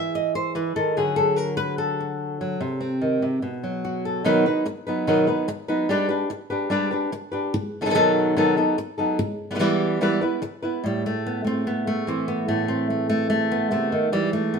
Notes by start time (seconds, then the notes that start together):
Already playing: E3 E4 E5
0.15 D#5
0.35 C5
0.55 E3 B4
0.76 D#3 A4
0.97 D3 F#3 F#4 G#4
1.16 F#3 A4
1.36 A#4
1.57 B4
1.78 A4
2.00 F#4
2.41 F#3
2.61 C3
2.81 C4
3.02 D#3
3.22 C3
3.42 B2
3.64 F#3
3.85 F#4
4.05 A4
4.24 B2 D#3 F#3 B3 D#4 B4
4.46 F#3 B3 D#4 B4
4.65 muted nylon-string guitar stroke
4.87 F#3 B3 D#4 B4
5.07 B2 D#3 F#3 B3 D#4 B4
5.27 F#3 B3 D#4 B4
5.48 muted nylon-string guitar stroke
5.68 F#3 B3 D#4 B4
5.89 G3 D4 G4 B4
6.09 D4 G4 B4
6.30 muted nylon-string guitar stroke
6.50 D4 G4 B4
6.70 G3 D4 G4 B4
6.91 D4 G4 B4
7.12 muted nylon-string guitar stroke
7.32 D4 G4 B4
7.54 muted nylon-string guitar stroke
7.81 D#3 F#3 B3 D#4 A4
7.85 D#3 F#3 B3 D#4 A4
7.90 D#3 F#3 B3 D#4 A4
7.94 B2 D#3 F#3 B3 D#4 A4
8.37 B2 D#3 F#3 B3 D#4 A4
8.57 F#3 B3 D#4 A4
8.78 muted nylon-string guitar stroke
8.98 F#3 B3 D#4 A4
9.19 muted nylon-string guitar stroke
9.51 G3 B3 E4 B4
9.55 G3 B3 E4 B4
9.59 E3 G3 B3 E4 B4
10.01 E3 G3 B3 E4 B4
10.21 B3 E4 B4
10.42 muted nylon-string guitar stroke
10.62 B3 E4 B4
10.84 A2 G3
11.06 A3
11.26 B3
11.44 A3 C4
11.67 B3
11.87 A3
12.07 E3 C4
12.28 B3
12.48 A2 A3
12.68 C4
12.90 A3
13.09 A3
13.30 A3
13.52 B3
13.71 C3 A3
13.92 D#3
14.12 E3 G3
14.33 A3
14.54 B3